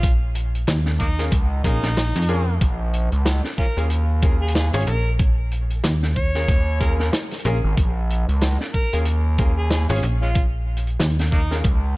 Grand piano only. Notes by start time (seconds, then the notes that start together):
1.19 C#4 F4 G#4 A#4
1.64 C#4 F4 G#4 A#4
2.29 C#4 F4 G#4 A#4
3.77 C#4 F4 G#4 A#4
4.23 C#4 F4 G#4 A#4
4.74 C#4 F4 G#4 C#5
6.35 C#4 F4 G#4 A#4
6.80 C#4 F4 G#4 A#4
7.45 C#4 F4 G#4 A#4
8.93 C#4 F4 G#4 A#4
9.39 C#4 F4 G#4 A#4
9.90 C#4 F4 G#4 C#5
11.51 C#4 F4 G#4 A#4